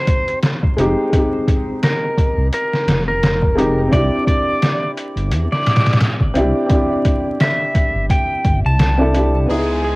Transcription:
Already playing: upright piano G#3 C4 D#4 G4, electric slide guitar C5
0.08 kick, closed hi-hat
0.28 closed hi-hat
0.43 snare, closed hi-hat
0.63 kick
0.77 detuned saw bass F1, upright piano G#3 C4 D#4 G4, closed hi-hat
1.10 upright piano G#3 C4, kick, closed hi-hat
1.15 upright piano D#4 G4
1.48 kick, closed hi-hat
1.83 electric slide guitar A#4, snare, closed hi-hat
2.18 kick, closed hi-hat
2.37 detuned saw bass C2
2.52 electric slide guitar A#4, closed hi-hat
2.73 snare
2.87 detuned saw bass F1, snare, closed hi-hat
3.08 electric slide guitar A#4
3.23 snare, closed hi-hat
3.42 kick
3.55 upright piano G#3 C4 D#4 G4, closed hi-hat
3.88 upright piano C4 D4
3.92 detuned saw bass C2, upright piano E4 G4, electric slide guitar D5, kick, closed hi-hat
4.27 electric slide guitar D5, kick, closed hi-hat
4.62 snare, closed hi-hat
4.97 closed hi-hat
5.16 detuned saw bass G1, closed hi-hat
5.30 detuned saw bass E2, closed hi-hat
5.52 electric slide guitar D5, snare
5.66 snare, closed hi-hat
5.76 snare, closed hi-hat
5.86 snare, closed hi-hat
5.93 snare, closed hi-hat
6.00 snare, closed hi-hat
6.21 kick
6.34 detuned saw bass C2, upright piano C4 D4 E4, closed hi-hat
6.38 upright piano G4
6.66 upright piano C4 D4, kick, closed hi-hat
6.72 upright piano E4 G4
7.05 kick, closed hi-hat
7.40 electric slide guitar E5, snare, closed hi-hat
7.75 kick, closed hi-hat
7.95 detuned saw bass G1
8.10 electric slide guitar G5, kick, closed hi-hat
8.44 detuned saw bass G1, kick, closed hi-hat
8.65 detuned saw bass C2, electric slide guitar A5
8.79 snare, closed hi-hat
8.97 upright piano C4 D4 E4 A4
9.12 upright piano C4 D4 E4, closed hi-hat
9.17 upright piano G4
9.45 detuned saw bass C#2, violin section G#3 G#5, upright piano B3 D#4, downlifter
9.50 upright piano E4 G#4, electric slide guitar G#4
9.84 electric slide guitar G#4

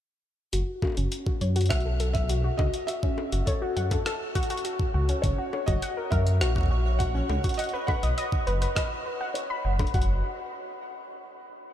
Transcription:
0.53 detuned saw bass F#1, synth pluck F#4, closed hi-hat
0.82 synth pluck F#4, kick, high bongo
0.85 high bongo
0.87 high bongo
0.90 high bongo
0.92 high bongo
0.95 detuned saw bass F#1, synth pluck C#4, closed hi-hat, high bongo
1.12 closed hi-hat
1.26 synth pluck F#4, kick
1.41 detuned saw bass F#2, synth pluck C#5, closed hi-hat
1.56 synth pluck F#4, closed hi-hat
1.61 closed hi-hat
1.66 felt piano E5, closed hi-hat
1.70 detuned saw bass B1, synth pluck F#5, kick, cross-stick, closed hi-hat
1.75 closed hi-hat
1.80 closed hi-hat
1.85 synth pluck A4
2.00 synth pluck A4, closed hi-hat
2.13 felt piano E5, kick, closed hi-hat
2.29 synth pluck F#4, closed hi-hat
2.44 synth pluck F#4
2.57 detuned saw bass C#2, synth pluck F#4, felt piano D#5, kick, high bongo
2.74 closed hi-hat
2.87 synth pluck F#4, felt piano E5, closed hi-hat
3.03 synth pluck C#4, kick
3.18 high bongo
3.32 detuned saw bass F#1, synth pluck F#4, closed hi-hat
3.46 felt piano A4, synth pluck C#5, kick, closed hi-hat
3.62 synth pluck F#4
3.77 detuned saw bass F#2, synth pluck F#5, closed hi-hat
3.91 synth pluck A4, kick, closed hi-hat, high bongo
4.06 synth pluck A4, cross-stick, closed hi-hat
4.35 synth pluck F#4, kick, closed hi-hat
4.43 closed hi-hat
4.50 synth pluck F#4, closed hi-hat
4.57 closed hi-hat
4.65 synth pluck F#4, closed hi-hat
4.80 kick
4.94 detuned saw bass C#2, synth pluck F#4
5.09 synth pluck C#4, closed hi-hat
5.22 detuned saw bass F#1, felt piano C#5, synth texture C#5, kick, closed hi-hat
5.38 synth pluck F#4
5.53 synth pluck C#5, high bongo
5.66 detuned saw bass F#1, synth pluck F#4, felt piano D#5, kick, closed hi-hat
5.82 synth pluck F#5, closed hi-hat
5.97 synth pluck A#4
6.10 detuned saw bass F#2, synth pluck A#4, felt piano E5, kick, closed hi-hat
6.27 closed hi-hat
6.41 detuned saw bass A#1, synth pluck F#4, cross-stick, closed hi-hat
6.56 synth pluck F#4, kick
6.58 kick
6.61 kick
6.63 kick
6.66 kick
6.68 synth pluck F#4, kick
6.99 synth pluck F#4, felt piano F#5, kick, closed hi-hat
7.15 synth pluck C#4
7.29 detuned saw bass C#2, high bongo
7.44 synth pluck F#4, kick, closed hi-hat
7.49 closed hi-hat
7.54 felt piano D#5, closed hi-hat
7.59 synth pluck F#5, closed hi-hat
7.64 closed hi-hat
7.69 closed hi-hat
7.73 synth pluck B4
7.87 felt piano F#5, synth pluck B5, kick, high bongo
8.03 detuned saw bass B1, synth pluck D#5, closed hi-hat
8.18 synth pluck D#5, closed hi-hat
8.32 kick
8.47 detuned saw bass F#1, synth pluck B4, closed hi-hat
8.62 synth pluck B4, closed hi-hat
8.75 synth pluck B4, felt piano D#5, kick, cross-stick, closed hi-hat
9.06 synth pluck B4
9.21 synth pluck F#5
9.34 felt piano C#5, closed hi-hat
9.50 synth pluck B5
9.65 detuned saw bass F#1, synth pluck F#5
9.79 synth pluck B5, kick, closed hi-hat, high bongo
9.87 closed hi-hat
9.94 detuned saw bass F#1, synth pluck F#4, felt piano F#5, kick, closed hi-hat
10.02 closed hi-hat

